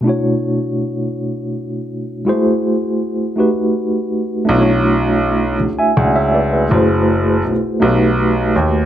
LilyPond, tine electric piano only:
\new Staff \with { instrumentName = "Tine electric piano" } { \time 6/8 \key b \dorian \tempo 4. = 54 << { r2. | r2. | r4. r16 <e'' gis''>16 <d'' fis''>16 <cis'' e''>16 <b' d''>16 <gis' b'>16~ | <gis' b'>16 r2 r8. | } \\ { <b, a d' e' fis' cis''>2. | <gis a e' fis' gis' c''>4. <a dis' fis' g' b'>4. | <a d' e' fis' b' cis''>2. | <a e' fis' gis' c''>4. <a dis' fis' g' b'>4. | } >> }